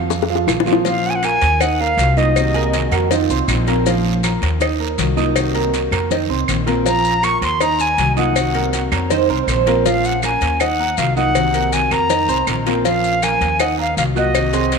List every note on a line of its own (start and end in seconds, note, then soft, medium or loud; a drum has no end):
0.00 0.44 F2 medium
0.00 0.23 F3 medium
0.00 0.10 F#4 medium
0.00 0.23 F5 medium
0.10 muted steel-string acoustic guitar stroke medium
0.10 high bongo medium
0.10 long guiro medium
0.10 maracas medium
0.22 high bongo medium
0.30 0.60 F3 medium
0.30 0.60 F4 medium
0.30 0.61 F5 medium
0.35 high bongo medium
0.47 1.36 A#1 medium
0.47 0.66 D#3 medium
0.47 0.66 A#3 medium
0.47 0.65 C4 medium
0.47 0.64 F4 medium
0.47 low bongo medium
0.47 short guiro medium
0.47 claves medium
0.47 maracas medium
0.60 low bongo medium
0.65 0.82 F3 medium
0.65 0.84 A#3 medium
0.65 0.85 C4 medium
0.65 0.84 F4 medium
0.65 0.83 F4 medium
0.65 0.83 F5 medium
0.65 short guiro medium
0.65 maracas soft
0.73 low bongo medium
0.84 1.21 F3 medium
0.84 1.17 F3 medium
0.84 1.22 A#3 medium
0.84 1.22 C#4 medium
0.84 1.22 F4 medium
0.84 1.17 F4 medium
0.84 1.17 F5 medium
0.84 1.08 F5 loud
0.84 cowbell loud
0.84 long guiro medium
0.84 maracas medium
1.06 1.11 F#5 medium
1.06 1.17 G#5 medium
1.16 1.26 F#5 medium
1.23 1.60 F3 soft
1.23 1.60 A#3 medium
1.23 1.54 A#3 medium
1.23 1.60 C#4 soft
1.23 1.60 F4 medium
1.23 1.54 A#4 medium
1.23 1.63 G#5 loud
1.23 1.55 A#5 medium
1.23 cowbell medium
1.23 short guiro medium
1.23 claves medium
1.23 maracas medium
1.41 1.94 D#2 medium
1.41 cowbell medium
1.41 short guiro medium
1.41 maracas soft
1.60 1.76 D#4 medium
1.60 1.77 D#5 medium
1.60 1.82 F#5 medium
1.60 1.77 D#6 medium
1.60 muted steel-string acoustic guitar stroke medium
1.60 cowbell loud
1.60 long guiro medium
1.60 claves medium
1.60 maracas medium
1.80 2.11 A#3 medium
1.80 2.11 A#4 medium
1.80 2.19 F5 loud
1.80 2.11 A#5 medium
1.97 2.85 C2 loud
1.97 2.16 D#3 medium
1.97 2.17 F#3 medium
1.97 2.16 A#3 medium
1.97 2.15 F4 medium
1.97 cowbell medium
1.97 short guiro medium
1.97 maracas medium
2.17 2.36 F#3 medium
2.17 2.35 A#3 medium
2.17 2.48 D#4 medium
2.17 2.35 F4 medium
2.17 2.48 D#5 medium
2.17 2.92 D#5 medium
2.17 2.48 D#6 medium
2.17 short guiro medium
2.17 maracas soft
2.36 2.73 C3 medium
2.36 2.72 D#3 medium
2.36 2.73 A#3 medium
2.36 2.73 C4 medium
2.36 2.74 F#4 medium
2.36 cowbell loud
2.36 long guiro medium
2.36 claves medium
2.36 maracas medium
2.54 2.85 A#3 medium
2.54 2.93 G#4 loud
2.54 2.86 A#4 medium
2.54 2.86 A#5 medium
2.54 cowbell medium
2.73 3.09 D#3 medium
2.73 3.10 A#3 medium
2.73 3.10 C4 medium
2.73 3.11 F#4 medium
2.73 cowbell medium
2.73 short guiro medium
2.73 maracas medium
2.91 3.26 F2 loud
2.91 3.07 A#3 medium
2.91 3.10 F#4 loud
2.91 3.08 A#4 medium
2.91 3.08 A#5 medium
2.91 cowbell medium
2.91 short guiro medium
2.91 claves medium
2.91 maracas soft
3.11 3.26 D#3 medium
3.11 3.26 D#4 medium
3.11 3.48 F4 loud
3.11 3.27 D#5 medium
3.11 muted steel-string acoustic guitar stroke medium
3.11 cowbell loud
3.11 long guiro medium
3.11 maracas medium
3.29 3.47 C2 medium
3.29 3.60 C4 medium
3.29 3.61 C5 medium
3.29 3.61 C6 medium
3.29 maracas medium
3.47 4.36 A#1 loud
3.47 3.66 D#3 medium
3.47 3.67 A#3 medium
3.47 3.67 C4 medium
3.47 4.19 D#4 medium
3.47 3.66 F4 medium
3.47 cowbell medium
3.47 short guiro medium
3.47 claves medium
3.47 maracas medium
3.67 3.82 A#3 medium
3.67 3.85 A#3 medium
3.67 3.86 C4 medium
3.67 3.85 F4 medium
3.67 3.83 A#4 medium
3.67 3.83 A#5 medium
3.67 cowbell medium
3.67 short guiro medium
3.67 maracas soft
3.86 4.22 F3 medium
3.86 4.17 F3 medium
3.86 4.22 A#3 medium
3.86 4.23 C#4 medium
3.86 4.17 F4 loud
3.86 4.24 F4 medium
3.86 4.17 F5 medium
3.86 cowbell loud
3.86 long guiro medium
3.86 maracas medium
4.23 4.60 F3 medium
4.23 4.60 A#3 medium
4.23 4.54 A#3 medium
4.23 4.60 C#4 medium
4.23 4.60 F4 medium
4.23 4.54 A#4 medium
4.23 4.55 A#5 medium
4.23 cowbell medium
4.23 short guiro medium
4.23 claves medium
4.23 maracas medium
4.42 4.94 D#2 medium
4.42 cowbell medium
4.42 short guiro medium
4.42 maracas soft
4.60 4.76 D#4 medium
4.60 4.76 D#5 medium
4.60 4.76 D#6 medium
4.60 muted steel-string acoustic guitar stroke medium
4.60 cowbell loud
4.60 long guiro medium
4.60 claves medium
4.60 maracas medium
4.79 5.10 A#3 medium
4.79 5.10 A#4 medium
4.79 5.10 A#5 medium
4.98 5.86 C2 loud
4.98 5.16 D#3 medium
4.98 5.16 F#3 medium
4.98 5.16 A#3 medium
4.98 5.15 F4 medium
4.98 cowbell medium
4.98 short guiro medium
4.98 maracas medium
5.17 5.36 F#3 medium
5.17 5.35 A#3 medium
5.17 5.48 D#4 medium
5.17 5.35 F4 medium
5.17 5.48 D#5 medium
5.17 5.48 D#6 medium
5.17 short guiro medium
5.17 maracas soft
5.35 5.72 C3 medium
5.35 5.72 D#3 medium
5.35 5.73 A#3 medium
5.35 5.73 C4 medium
5.35 5.73 F#4 medium
5.35 cowbell loud
5.35 long guiro medium
5.35 claves medium
5.35 maracas medium
5.54 5.85 A#3 medium
5.54 5.85 A#4 medium
5.54 5.85 A#5 medium
5.54 cowbell medium
5.73 6.09 D#3 soft
5.73 6.10 A#3 medium
5.73 6.10 C4 medium
5.73 6.11 F#4 medium
5.73 cowbell medium
5.73 short guiro medium
5.73 maracas medium
5.91 6.27 F2 medium
5.91 6.07 A#3 medium
5.91 6.07 A#4 medium
5.91 6.07 A#5 medium
5.91 cowbell medium
5.91 short guiro medium
5.91 claves medium
5.91 maracas soft
6.10 6.26 D#3 medium
6.10 6.26 D#4 medium
6.10 6.26 D#5 medium
6.10 muted steel-string acoustic guitar stroke medium
6.10 cowbell loud
6.10 long guiro medium
6.10 maracas medium
6.29 6.47 C2 medium
6.29 6.60 C4 medium
6.29 6.60 C5 medium
6.29 6.60 C6 medium
6.48 7.36 A#1 medium
6.48 6.66 D#3 medium
6.48 6.66 A#3 medium
6.48 6.67 C4 medium
6.48 6.66 F4 medium
6.48 cowbell medium
6.48 short guiro medium
6.48 claves medium
6.48 maracas medium
6.66 6.82 A#3 medium
6.66 6.85 A#3 medium
6.66 6.85 C4 medium
6.66 6.85 F4 medium
6.66 6.82 A#4 medium
6.66 6.82 A#5 medium
6.66 cowbell medium
6.66 short guiro medium
6.66 maracas soft
6.85 7.16 F3 medium
6.85 7.22 F3 medium
6.85 7.22 A#3 medium
6.85 7.23 C#4 medium
6.85 7.16 F4 medium
6.85 7.23 F4 medium
6.85 7.17 F5 medium
6.85 7.25 A#5 loud
6.85 cowbell loud
6.85 long guiro medium
6.85 maracas medium
7.05 maracas medium
7.23 7.60 F3 soft
7.23 7.54 A#3 medium
7.23 7.60 A#3 medium
7.23 7.61 C#4 soft
7.23 7.60 F4 medium
7.23 7.54 A#4 medium
7.23 7.54 A#5 medium
7.23 7.42 C#6 loud
7.23 cowbell medium
7.23 short guiro medium
7.23 claves medium
7.23 maracas medium
7.41 7.94 D#2 loud
7.41 7.63 C6 medium
7.41 cowbell medium
7.41 short guiro medium
7.41 maracas soft
7.60 7.76 D#4 medium
7.60 7.76 D#5 medium
7.60 7.83 A#5 loud
7.60 7.76 D#6 medium
7.60 muted steel-string acoustic guitar stroke medium
7.60 cowbell loud
7.60 long guiro medium
7.60 claves medium
7.60 maracas medium
7.79 8.10 A#3 medium
7.79 8.10 A#4 medium
7.79 8.17 G#5 loud
7.79 8.10 A#5 medium
7.79 maracas medium
7.98 8.86 C2 medium
7.98 8.16 D#3 soft
7.98 8.16 F#3 medium
7.98 8.17 A#3 medium
7.98 8.16 F4 medium
7.98 cowbell medium
7.98 short guiro medium
7.98 maracas medium
8.17 8.36 F#3 medium
8.17 8.35 A#3 medium
8.17 8.47 D#4 medium
8.17 8.35 F4 medium
8.17 8.47 D#5 medium
8.17 8.88 F#5 medium
8.17 8.48 D#6 medium
8.17 short guiro medium
8.17 maracas soft
8.36 8.72 C3 medium
8.36 8.72 D#3 medium
8.36 8.72 A#3 medium
8.36 8.73 C4 medium
8.36 8.73 F#4 medium
8.36 cowbell loud
8.36 long guiro medium
8.36 claves medium
8.36 maracas medium
8.54 8.85 A#3 medium
8.54 8.85 A#4 medium
8.54 8.91 A#4 loud
8.54 8.86 A#5 medium
8.54 cowbell medium
8.73 9.09 D#3 soft
8.73 9.10 A#3 medium
8.73 9.10 C4 medium
8.73 9.11 F#4 medium
8.73 cowbell medium
8.73 short guiro medium
8.73 maracas medium
8.91 9.26 F2 medium
8.91 9.07 A#3 medium
8.91 9.07 A#4 medium
8.91 9.09 C#5 loud
8.91 9.08 A#5 medium
8.91 cowbell medium
8.91 short guiro medium
8.91 claves medium
8.91 maracas soft
9.10 9.26 D#3 medium
9.10 9.26 D#4 medium
9.10 9.29 C5 medium
9.10 9.26 D#5 medium
9.10 muted steel-string acoustic guitar stroke medium
9.10 cowbell loud
9.10 long guiro medium
9.10 maracas medium
9.28 9.46 C2 medium
9.28 9.60 C4 medium
9.28 9.48 A#4 medium
9.28 9.60 C5 medium
9.28 9.60 C6 medium
9.47 10.35 A#1 loud
9.47 9.66 D#3 medium
9.47 9.66 A#3 medium
9.47 9.67 C4 medium
9.47 9.66 F4 medium
9.47 9.75 C5 medium
9.47 cowbell medium
9.47 short guiro medium
9.47 claves medium
9.47 maracas medium
9.67 9.82 A#3 medium
9.67 9.85 A#3 medium
9.67 9.85 C4 medium
9.67 9.85 F4 medium
9.67 9.82 A#4 medium
9.67 9.82 A#5 medium
9.67 cowbell medium
9.67 short guiro medium
9.67 maracas soft
9.85 10.21 F3 medium
9.85 10.16 F3 medium
9.85 10.22 A#3 medium
9.85 10.23 C#4 medium
9.85 10.16 F4 medium
9.85 10.23 F4 medium
9.85 10.16 F5 medium
9.85 10.07 F5 medium
9.85 cowbell loud
9.85 long guiro medium
9.85 maracas medium
10.04 10.24 F#5 medium
10.04 maracas medium
10.23 10.59 F3 medium
10.23 10.59 A#3 medium
10.23 10.54 A#3 medium
10.23 10.60 C#4 medium
10.23 10.60 F4 medium
10.23 10.54 A#4 medium
10.23 10.63 G#5 medium
10.23 10.54 A#5 medium
10.23 cowbell medium
10.23 short guiro medium
10.23 claves medium
10.23 maracas medium
10.41 10.94 D#2 medium
10.41 cowbell medium
10.41 short guiro medium
10.41 maracas soft
10.60 10.76 D#4 medium
10.60 10.76 D#5 medium
10.60 10.99 F#5 medium
10.60 10.76 D#6 medium
10.60 muted steel-string acoustic guitar stroke medium
10.60 cowbell loud
10.60 long guiro medium
10.60 claves medium
10.60 maracas medium
10.79 11.10 A#3 medium
10.79 11.10 A#4 medium
10.79 11.10 A#5 medium
10.97 11.85 C2 medium
10.97 11.15 D#3 medium
10.97 11.16 F#3 medium
10.97 11.16 A#3 medium
10.97 11.15 F4 medium
10.97 11.16 F5 medium
10.97 cowbell medium
10.97 short guiro medium
10.97 maracas medium
11.16 11.35 F#3 medium
11.16 11.35 A#3 medium
11.16 11.47 D#4 medium
11.16 11.34 F4 medium
11.16 11.48 D#5 medium
11.16 11.75 F#5 loud
11.16 11.48 D#6 medium
11.16 short guiro medium
11.16 maracas soft
11.35 11.72 C3 medium
11.35 11.71 D#3 medium
11.35 11.72 A#3 medium
11.35 11.72 C4 medium
11.35 11.73 F#4 medium
11.35 cowbell loud
11.35 long guiro medium
11.35 claves medium
11.35 maracas medium
11.54 11.84 A#3 medium
11.54 11.85 A#4 medium
11.54 11.85 A#5 medium
11.54 cowbell medium
11.54 maracas medium
11.72 12.09 D#3 medium
11.72 12.09 A#3 soft
11.72 12.09 C4 medium
11.72 12.10 F#4 medium
11.72 11.93 G#5 medium
11.72 cowbell medium
11.72 short guiro medium
11.72 maracas medium
11.91 12.26 F2 medium
11.91 12.06 A#3 medium
11.91 12.07 A#4 medium
11.91 12.07 A#5 medium
11.91 12.67 A#5 medium
11.91 cowbell medium
11.91 short guiro medium
11.91 claves medium
11.91 maracas soft
12.10 12.25 D#3 medium
12.10 12.25 D#4 medium
12.10 12.25 D#5 medium
12.10 muted steel-string acoustic guitar stroke medium
12.10 cowbell loud
12.10 long guiro medium
12.10 maracas medium
12.28 12.46 C2 medium
12.28 12.59 C4 medium
12.28 12.59 C5 medium
12.28 12.34 C5 medium
12.28 12.60 C6 medium
12.28 maracas medium
12.47 13.35 A#1 medium
12.47 12.65 D#3 medium
12.47 12.66 A#3 medium
12.47 12.65 C4 medium
12.47 12.65 F4 medium
12.47 12.82 A#4 medium
12.47 cowbell medium
12.47 short guiro medium
12.47 claves medium
12.47 maracas medium
12.66 12.82 A#3 medium
12.66 12.84 A#3 medium
12.66 12.84 C4 medium
12.66 12.84 F4 medium
12.66 12.82 A#4 medium
12.66 12.82 A#5 medium
12.66 cowbell medium
12.66 short guiro medium
12.66 maracas soft
12.84 13.21 F3 medium
12.84 13.16 F3 medium
12.84 13.22 A#3 medium
12.84 13.22 C#4 medium
12.84 13.16 F4 medium
12.84 13.22 F4 medium
12.84 13.16 F5 medium
12.84 13.25 F5 loud
12.84 cowbell loud
12.84 long guiro medium
12.84 maracas medium
13.04 maracas medium
13.22 13.59 F3 medium
13.22 13.53 A#3 medium
13.22 13.59 A#3 medium
13.22 13.60 C#4 medium
13.22 13.59 F4 medium
13.22 13.53 A#4 medium
13.22 13.62 G#5 medium
13.22 13.53 A#5 medium
13.22 cowbell medium
13.22 short guiro medium
13.22 claves medium
13.22 maracas medium
13.41 13.93 D#2 loud
13.41 cowbell medium
13.41 short guiro medium
13.41 maracas soft
13.59 13.75 D#4 medium
13.59 13.75 D#5 medium
13.59 13.79 F#5 loud
13.59 13.75 D#6 medium
13.59 muted steel-string acoustic guitar stroke medium
13.59 cowbell loud
13.59 long guiro medium
13.59 claves medium
13.59 maracas medium
13.78 14.09 A#3 medium
13.78 14.09 A#4 medium
13.78 13.97 F5 loud
13.78 14.09 A#5 medium
13.97 14.79 C2 medium
13.97 14.15 D#3 medium
13.97 14.16 F#3 medium
13.97 14.15 A#3 medium
13.97 14.14 F4 medium
13.97 14.03 F5 medium
13.97 cowbell medium
13.97 short guiro medium
13.97 maracas medium
14.15 14.34 F#3 medium
14.15 14.34 A#3 medium
14.15 14.34 F4 medium
14.15 14.47 F#4 medium
14.15 14.79 D#5 medium
14.15 14.47 F#5 medium
14.15 14.47 F#6 medium
14.15 short guiro medium
14.15 maracas soft
14.34 14.71 C3 medium
14.34 14.71 D#3 medium
14.34 14.72 A#3 medium
14.34 14.72 C4 medium
14.34 14.72 F#4 medium
14.34 cowbell loud
14.34 long guiro medium
14.34 claves medium
14.34 maracas medium
14.53 14.79 C4 medium
14.53 14.79 G#4 loud
14.53 14.79 C5 medium
14.53 14.79 C6 medium
14.53 cowbell medium
14.53 maracas medium
14.72 14.79 D#3 medium
14.72 14.79 A#3 medium
14.72 14.79 C4 medium
14.72 14.79 F#4 medium
14.72 cowbell medium
14.72 short guiro medium
14.72 maracas medium